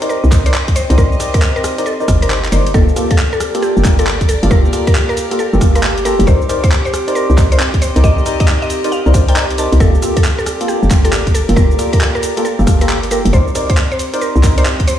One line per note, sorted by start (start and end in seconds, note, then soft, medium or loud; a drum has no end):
0.00 3.83 C4 medium
0.00 0.30 D#4 medium
0.00 14.99 G4 medium
0.00 0.49 A#4 medium
0.00 0.30 A#4 medium
0.00 0.30 C5 medium
0.00 0.30 D5 loud
0.00 closed hi-hat medium
0.00 cabasa soft
0.06 0.26 A#4 medium
0.06 2.74 D#5 medium
0.06 cabasa soft
0.24 0.30 C2 loud
0.24 cabasa soft
0.32 0.85 C2 medium
0.32 0.43 D#4 medium
0.32 0.43 A#4 medium
0.32 0.43 C5 medium
0.32 0.43 D#5 medium
0.32 kick loud
0.32 clap medium
0.32 open hi-hat loud
0.32 cabasa medium
0.46 0.54 D#4 medium
0.46 0.54 A#4 medium
0.46 0.54 C5 medium
0.46 0.58 C5 loud
0.46 0.54 D5 medium
0.46 closed hi-hat medium
0.46 cabasa soft
0.54 clap loud
0.54 cabasa soft
0.68 kick medium
0.68 closed hi-hat medium
0.68 cabasa soft
0.76 0.88 C5 medium
0.76 open hi-hat medium
0.76 cabasa medium
0.90 0.96 C2 loud
0.90 0.96 D#4 medium
0.90 0.96 A#4 medium
0.90 0.96 C5 medium
0.90 0.96 D5 loud
0.90 closed hi-hat medium
0.90 cabasa soft
0.98 1.09 C2 loud
0.98 1.18 D#4 medium
0.98 1.14 A#4 loud
0.98 1.18 A#4 medium
0.98 1.18 C5 medium
0.98 1.18 D5 loud
0.98 kick loud
0.98 cabasa soft
1.12 cabasa soft
1.20 1.75 D#4 medium
1.20 1.75 A#4 medium
1.20 1.75 C5 medium
1.20 1.75 D5 medium
1.20 cross-stick soft
1.20 open hi-hat loud
1.20 cabasa medium
1.34 1.41 A#4 medium
1.34 kick loud
1.34 closed hi-hat medium
1.34 cabasa soft
1.42 clap loud
1.42 cabasa soft
1.56 1.68 A#4 medium
1.56 cabasa soft
1.64 cross-stick medium
1.64 open hi-hat loud
1.64 cabasa medium
1.78 1.86 D#4 loud
1.78 1.86 A#4 medium
1.78 1.86 C5 medium
1.78 1.86 D5 loud
1.78 closed hi-hat medium
1.78 cabasa soft
1.86 2.03 A4 loud
1.86 cabasa soft
2.00 2.07 D#4 medium
2.00 2.07 A#4 medium
2.00 2.07 C5 medium
2.00 2.07 D5 loud
2.00 cabasa soft
2.08 2.50 G1 loud
2.08 2.19 D#4 medium
2.08 2.19 A#4 medium
2.08 2.19 C5 medium
2.08 2.19 D5 loud
2.08 kick loud
2.08 cross-stick medium
2.08 open hi-hat loud
2.08 cabasa medium
2.22 2.39 D#4 medium
2.22 2.39 A#4 medium
2.22 2.34 A#4 loud
2.22 2.39 C5 medium
2.22 2.39 D5 loud
2.22 closed hi-hat medium
2.22 cabasa soft
2.30 clap loud
2.30 cabasa soft
2.44 clap medium
2.44 closed hi-hat medium
2.44 cabasa soft
2.52 2.71 G1 medium
2.52 2.72 D#4 medium
2.52 2.72 A#4 medium
2.52 2.64 C5 medium
2.52 2.72 C5 medium
2.52 2.72 D5 medium
2.52 open hi-hat loud
2.52 cabasa medium
2.67 closed hi-hat medium
2.67 cabasa soft
2.74 2.86 G1 medium
2.74 2.89 A#3 medium
2.74 2.89 F4 medium
2.74 2.89 G4 medium
2.74 2.91 A4 loud
2.74 2.89 A4 loud
2.74 kick loud
2.74 cabasa soft
2.87 6.27 D5 medium
2.87 cabasa soft
2.96 3.11 A#3 medium
2.96 3.11 F4 medium
2.96 3.11 G4 medium
2.96 3.11 A4 loud
2.96 cross-stick soft
2.96 open hi-hat loud
2.96 cabasa medium
3.11 3.17 A4 medium
3.11 kick loud
3.11 closed hi-hat medium
3.11 cabasa soft
3.18 clap loud
3.18 cabasa soft
3.33 3.45 A4 loud
3.33 cabasa soft
3.38 6.98 A#4 medium
3.38 cross-stick medium
3.38 open hi-hat medium
3.38 cabasa medium
3.55 3.83 A#3 medium
3.55 3.83 F4 medium
3.55 3.83 G4 medium
3.55 3.83 A4 loud
3.55 closed hi-hat medium
3.55 cabasa soft
3.62 3.79 G4 loud
3.62 cabasa soft
3.77 3.83 G1 loud
3.77 cabasa soft
3.85 4.38 G1 medium
3.85 3.95 A#3 medium
3.85 3.95 F4 medium
3.85 3.95 G4 medium
3.85 3.95 A#4 medium
3.85 kick loud
3.85 clap medium
3.85 open hi-hat loud
3.85 cabasa medium
3.99 4.07 A#3 medium
3.99 4.07 F4 medium
3.99 4.07 G4 medium
3.99 4.07 A4 medium
3.99 4.11 A4 medium
3.99 closed hi-hat medium
3.99 cabasa soft
4.07 clap loud
4.07 cabasa soft
4.21 kick medium
4.21 closed hi-hat medium
4.21 cabasa soft
4.29 4.41 A4 medium
4.29 open hi-hat loud
4.29 cabasa medium
4.43 4.49 G1 loud
4.43 4.49 A#3 medium
4.43 4.49 F4 medium
4.43 4.49 G4 medium
4.43 4.49 A4 loud
4.43 closed hi-hat medium
4.43 cabasa soft
4.51 4.62 G1 loud
4.51 4.71 A#3 medium
4.51 4.71 F4 medium
4.51 4.71 G4 medium
4.51 4.71 A4 loud
4.51 4.67 A#4 loud
4.51 kick loud
4.51 cabasa soft
4.65 cabasa soft
4.73 5.28 A#3 medium
4.73 5.28 F4 medium
4.73 5.28 G4 medium
4.73 5.28 A4 medium
4.73 cross-stick soft
4.73 open hi-hat loud
4.73 cabasa medium
4.87 4.94 A#4 medium
4.87 kick loud
4.87 closed hi-hat medium
4.87 cabasa soft
4.95 clap loud
4.95 cabasa soft
5.09 5.21 A#4 medium
5.09 cabasa soft
5.17 open hi-hat medium
5.17 cabasa medium
5.31 5.39 A#3 medium
5.31 5.39 F4 medium
5.31 5.39 G4 medium
5.31 5.39 A4 loud
5.31 closed hi-hat medium
5.31 cabasa soft
5.39 5.56 A4 loud
5.39 cabasa soft
5.53 5.59 G1 loud
5.53 5.59 A#3 medium
5.53 5.59 F4 medium
5.53 5.60 G4 medium
5.53 5.60 A4 loud
5.53 cabasa soft
5.61 6.15 G1 medium
5.61 5.72 A#3 medium
5.61 5.72 F4 medium
5.61 5.72 G4 medium
5.61 5.72 A4 loud
5.61 kick loud
5.61 cross-stick medium
5.61 open hi-hat loud
5.61 cabasa medium
5.75 5.92 A#3 medium
5.75 5.92 F4 medium
5.75 5.92 G4 medium
5.75 5.92 A4 loud
5.75 5.87 A#4 loud
5.75 closed hi-hat medium
5.75 cabasa soft
5.83 clap loud
5.83 cabasa soft
5.98 closed hi-hat medium
5.98 cabasa soft
6.05 6.25 A#3 medium
6.05 6.25 F4 medium
6.05 6.25 G4 medium
6.05 6.25 A4 medium
6.05 6.17 A#4 medium
6.05 open hi-hat medium
6.05 cabasa medium
6.19 6.26 G1 loud
6.19 closed hi-hat medium
6.19 cabasa soft
6.27 6.38 C2 loud
6.27 11.24 C4 medium
6.27 6.42 D#4 medium
6.27 6.42 A#4 medium
6.27 6.44 C5 loud
6.27 6.42 C5 medium
6.27 6.42 D5 medium
6.27 kick loud
6.27 cabasa soft
6.42 cabasa soft
6.49 6.64 D#4 medium
6.49 6.64 A#4 medium
6.49 6.64 C5 medium
6.49 6.64 D5 loud
6.49 cross-stick soft
6.49 open hi-hat loud
6.49 cabasa medium
6.64 6.70 C5 medium
6.64 kick loud
6.64 closed hi-hat medium
6.64 cabasa soft
6.72 clap loud
6.72 cabasa soft
6.85 6.97 C5 loud
6.85 cabasa soft
6.94 cross-stick medium
6.94 open hi-hat medium
6.94 cabasa medium
7.08 7.36 D#4 medium
7.08 7.36 A#4 medium
7.08 7.36 C5 medium
7.08 7.36 D5 loud
7.08 closed hi-hat medium
7.08 cabasa soft
7.15 7.32 A#4 loud
7.15 cabasa soft
7.30 7.36 C2 loud
7.30 cabasa soft
7.37 7.91 C2 medium
7.37 7.48 D#4 medium
7.37 7.48 A#4 medium
7.37 7.48 C5 medium
7.37 7.48 D#5 medium
7.37 kick loud
7.37 clap medium
7.37 open hi-hat loud
7.37 cabasa medium
7.52 7.60 D#4 medium
7.52 7.60 A#4 medium
7.52 7.64 C5 medium
7.52 7.60 C5 medium
7.52 7.60 D5 medium
7.52 9.80 D#5 medium
7.52 closed hi-hat medium
7.52 cabasa soft
7.60 clap loud
7.60 cabasa soft
7.74 kick medium
7.74 closed hi-hat medium
7.74 cabasa soft
7.82 7.94 C5 medium
7.82 open hi-hat medium
7.82 cabasa medium
7.96 8.02 C2 loud
7.96 8.02 D#4 medium
7.96 8.02 A#4 medium
7.96 8.02 C5 medium
7.96 8.02 D5 loud
7.96 closed hi-hat medium
7.96 cabasa soft
8.04 8.15 C2 loud
8.04 8.24 D#4 medium
8.04 8.24 A#4 medium
8.04 8.24 D5 loud
8.04 8.20 D#5 loud
8.04 kick loud
8.04 cabasa soft
8.18 cabasa soft
8.26 8.81 D#4 medium
8.26 8.81 A#4 medium
8.26 8.81 C5 medium
8.26 8.81 D5 medium
8.26 cross-stick soft
8.26 open hi-hat loud
8.26 cabasa medium
8.40 8.47 D#5 medium
8.40 kick loud
8.40 closed hi-hat medium
8.40 cabasa soft
8.48 clap loud
8.48 cabasa soft
8.62 8.74 D#5 medium
8.62 cabasa soft
8.70 open hi-hat medium
8.70 cabasa medium
8.84 8.92 D#4 medium
8.84 8.92 A#4 medium
8.84 8.92 C5 medium
8.84 8.92 D5 loud
8.84 closed hi-hat medium
8.84 cabasa soft
8.92 9.08 F5 loud
8.92 cabasa soft
9.06 9.12 C2 loud
9.06 9.13 D#4 medium
9.06 9.12 A#4 medium
9.06 9.12 C5 medium
9.06 9.13 D5 loud
9.06 cabasa soft
9.14 9.68 C2 medium
9.14 9.25 D#4 medium
9.14 9.25 A#4 medium
9.14 9.25 C5 medium
9.14 9.25 D5 medium
9.14 kick loud
9.14 cross-stick medium
9.14 open hi-hat loud
9.14 cabasa medium
9.28 9.45 D#4 loud
9.28 9.45 A#4 medium
9.28 9.45 C5 medium
9.28 9.45 D5 loud
9.28 9.40 G5 medium
9.28 closed hi-hat medium
9.28 cabasa soft
9.36 clap loud
9.36 cabasa soft
9.51 closed hi-hat medium
9.51 cabasa soft
9.58 9.78 D#4 medium
9.58 9.78 A#4 medium
9.58 9.78 C5 medium
9.58 9.78 D5 medium
9.58 9.70 A5 medium
9.58 open hi-hat medium
9.58 cabasa medium
9.72 9.79 C2 loud
9.72 closed hi-hat medium
9.72 cabasa soft
9.80 9.91 G1 loud
9.80 9.95 A#3 medium
9.80 9.95 F4 medium
9.80 9.95 G4 medium
9.80 9.95 A4 loud
9.80 9.97 A4 loud
9.80 kick loud
9.80 cabasa soft
9.95 cabasa soft
10.02 10.17 A#3 loud
10.02 10.17 F4 medium
10.02 10.17 G4 medium
10.02 10.17 A4 loud
10.02 cross-stick soft
10.02 open hi-hat loud
10.02 cabasa medium
10.17 10.23 A4 medium
10.17 kick loud
10.17 closed hi-hat medium
10.17 cabasa soft
10.21 14.77 A#4 medium
10.21 clap loud
10.21 cabasa soft
10.39 10.51 A4 medium
10.39 13.33 D5 medium
10.39 cabasa soft
10.46 cross-stick medium
10.46 open hi-hat medium
10.46 cabasa medium
10.61 10.89 A#3 medium
10.61 10.89 F4 medium
10.61 10.89 G4 medium
10.61 10.89 A4 loud
10.61 closed hi-hat medium
10.61 cabasa soft
10.68 10.85 G4 loud
10.68 cabasa soft
10.83 10.89 G1 loud
10.83 cabasa soft
10.90 11.44 G1 medium
10.90 11.01 A#3 medium
10.90 11.01 F4 medium
10.90 11.01 G4 medium
10.90 11.01 A#4 medium
10.90 kick loud
10.90 clap medium
10.90 open hi-hat loud
10.90 cabasa medium
11.05 11.13 A#3 medium
11.05 11.13 F4 medium
11.05 11.13 G4 medium
11.05 11.17 A4 loud
11.05 11.13 A4 medium
11.05 closed hi-hat medium
11.05 cabasa soft
11.13 clap loud
11.13 cabasa soft
11.27 kick medium
11.27 closed hi-hat medium
11.27 cabasa soft
11.35 11.47 A4 medium
11.35 open hi-hat medium
11.35 cabasa medium
11.49 11.55 G1 loud
11.49 11.55 A#3 medium
11.49 11.55 F4 medium
11.49 11.55 G4 medium
11.49 11.55 A4 loud
11.49 closed hi-hat medium
11.49 cabasa soft
11.56 11.68 G1 loud
11.56 11.77 A#3 medium
11.56 11.77 G4 medium
11.56 11.77 A4 loud
11.56 11.73 A#4 loud
11.56 kick loud
11.56 cabasa soft
11.71 cabasa soft
11.79 12.34 A#3 medium
11.79 12.34 F4 medium
11.79 12.34 G4 medium
11.79 12.34 A4 medium
11.79 cross-stick soft
11.79 open hi-hat loud
11.79 cabasa medium
11.93 12.00 A#4 medium
11.93 kick loud
11.93 closed hi-hat medium
11.93 cabasa soft
12.01 clap loud
12.01 cabasa soft
12.15 12.27 A#4 medium
12.15 cabasa soft
12.23 open hi-hat loud
12.23 cabasa medium
12.37 12.45 A#3 medium
12.37 12.45 F4 medium
12.37 12.45 G4 medium
12.37 12.45 A4 loud
12.37 closed hi-hat medium
12.37 cabasa soft
12.45 12.61 A4 loud
12.45 cabasa soft
12.59 12.65 G1 loud
12.59 12.65 A#3 medium
12.59 12.65 F4 medium
12.59 12.65 G4 medium
12.59 12.65 A4 loud
12.59 cabasa soft
12.67 13.20 G1 medium
12.67 12.78 A#3 medium
12.67 12.78 F4 medium
12.67 12.78 G4 medium
12.67 12.78 A4 medium
12.67 kick loud
12.67 cross-stick medium
12.67 open hi-hat loud
12.67 cabasa medium
12.81 12.98 A#3 loud
12.81 12.98 F4 medium
12.81 12.98 G4 medium
12.81 12.98 A4 loud
12.81 12.93 A#4 medium
12.81 closed hi-hat medium
12.81 cabasa soft
12.89 clap loud
12.89 cabasa soft
13.03 closed hi-hat medium
13.03 cabasa soft
13.11 13.31 A#3 medium
13.11 13.31 F4 medium
13.11 13.31 G4 medium
13.11 13.31 A4 medium
13.11 13.23 A#4 medium
13.11 open hi-hat medium
13.11 cabasa medium
13.25 13.31 G1 loud
13.25 closed hi-hat medium
13.25 cabasa soft
13.33 13.44 C2 medium
13.33 14.99 C4 medium
13.33 13.48 D#4 medium
13.33 13.48 A#4 medium
13.33 13.50 C5 loud
13.33 13.48 C5 medium
13.33 13.48 D5 loud
13.33 kick loud
13.33 cabasa soft
13.48 cabasa soft
13.55 13.70 D#4 medium
13.55 13.70 A#4 medium
13.55 13.70 C5 medium
13.55 13.70 D5 loud
13.55 cross-stick soft
13.55 open hi-hat loud
13.55 cabasa medium
13.70 13.76 C5 medium
13.70 kick loud
13.70 closed hi-hat medium
13.70 cabasa soft
13.77 clap loud
13.77 cabasa soft
13.92 14.03 C5 medium
13.92 cabasa soft
13.99 open hi-hat medium
13.99 cabasa medium
14.14 14.42 D#4 medium
14.14 14.42 A#4 medium
14.14 14.42 C5 medium
14.14 14.42 D5 loud
14.14 14.99 D#5 medium
14.14 closed hi-hat medium
14.14 cabasa soft
14.21 14.38 A#4 loud
14.21 cabasa soft
14.36 14.42 C2 loud
14.36 cabasa soft
14.43 14.97 C2 medium
14.43 14.54 D#4 medium
14.43 14.54 A#4 medium
14.43 14.54 C5 medium
14.43 14.54 D#5 medium
14.43 kick loud
14.43 clap medium
14.43 open hi-hat loud
14.43 cabasa medium
14.58 14.66 D#4 medium
14.58 14.66 A#4 medium
14.58 14.66 C5 medium
14.58 14.70 C5 loud
14.58 14.66 D5 medium
14.58 closed hi-hat medium
14.58 cabasa soft
14.66 clap loud
14.66 cabasa soft
14.80 kick medium
14.80 closed hi-hat medium
14.80 cabasa soft
14.88 14.99 C5 medium
14.88 open hi-hat loud
14.88 cabasa medium